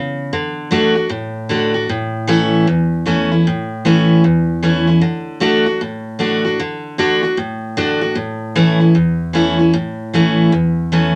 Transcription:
0.00 0.31 C#3 medium
0.33 0.70 D3 loud
0.71 0.95 D3 loud
0.71 0.95 A3 loud
0.71 0.95 D4 loud
0.71 0.94 F#4 loud
0.95 1.11 D4 soft
0.95 1.10 F#4 medium
1.09 1.86 A2 medium
1.49 1.73 D3 medium
1.49 1.74 A3 medium
1.49 1.74 D4 medium
1.49 1.73 F#4 medium
1.74 1.89 D4 medium
1.74 1.88 F#4 medium
1.89 2.65 A2 medium
2.27 2.66 E3 loud
2.27 2.66 A3 loud
2.27 2.66 C#4 loud
2.27 2.67 E4 loud
2.67 3.43 E2 medium
3.06 3.30 E3 medium
3.06 3.30 A3 medium
3.06 3.30 C#4 loud
3.06 3.30 E4 loud
3.31 3.46 C#4 medium
3.31 3.46 E4 medium
3.47 4.22 A2 medium
3.85 4.23 E3 medium
3.85 4.23 A3 medium
3.85 4.24 C#4 loud
3.85 4.24 E4 loud
4.24 5.00 E2 medium
4.63 4.87 E3 medium
4.63 4.87 A3 medium
4.63 4.87 C#4 medium
4.63 4.86 E4 loud
4.87 5.03 C#4 medium
4.87 5.02 E4 medium
5.01 5.39 D3 medium
5.40 5.65 D3 loud
5.40 5.65 A3 loud
5.40 5.66 D4 loud
5.40 5.65 F#4 loud
5.66 5.82 D4 soft
5.66 5.81 F#4 medium
5.81 6.57 A2 medium
6.19 6.44 D3 medium
6.19 6.44 A3 loud
6.19 6.44 D4 loud
6.19 6.43 F#4 loud
6.45 6.60 D4 medium
6.45 6.59 F#4 medium
6.60 6.97 D3 medium
6.98 7.23 D3 loud
6.98 7.23 A3 loud
6.98 7.23 D4 loud
6.98 7.22 F#4 loud
7.23 7.38 D4 medium
7.23 7.37 F#4 medium
7.37 8.14 A2 medium
7.77 8.01 D3 loud
7.77 8.01 A3 loud
7.77 8.02 D4 loud
7.77 8.00 F#4 loud
8.01 8.17 D4 medium
8.01 8.16 F#4 medium
8.15 8.92 A2 loud
8.55 8.80 E3 loud
8.55 8.80 A3 loud
8.55 8.80 C#4 loud
8.55 8.78 E4 loud
8.80 8.95 C#4 medium
8.80 8.94 E4 medium
8.95 9.71 E2 medium
9.33 9.58 E3 medium
9.33 9.58 A3 loud
9.33 9.59 C#4 loud
9.33 9.58 E4 loud
9.59 9.74 C#4 medium
9.59 9.73 E4 medium
9.73 10.49 A2 medium
10.13 10.51 E3 medium
10.13 10.52 A3 loud
10.13 10.52 C#4 loud
10.13 10.52 E4 loud
10.52 11.15 E2 medium
10.92 11.15 E3 medium
10.92 11.15 A3 loud
10.92 11.15 C#4 medium
10.92 11.15 E4 medium

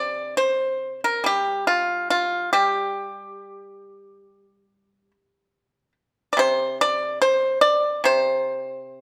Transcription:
0.00 2.11 C3 soft
0.00 0.35 D5 medium
0.37 1.00 C5 medium
1.04 1.24 A#4 medium
1.24 2.52 G3 soft
1.24 1.66 G4 medium
1.67 2.08 F4 medium
2.10 2.51 F4 medium
2.53 5.11 G3 soft
2.53 5.92 G4 medium
6.33 6.39 D5 medium
6.37 8.03 C3 soft
6.37 6.77 C5 medium
6.81 7.19 D5 medium
7.22 7.61 C5 medium
7.61 8.01 D5 medium
8.04 9.01 C3 medium
8.04 9.01 C5 medium

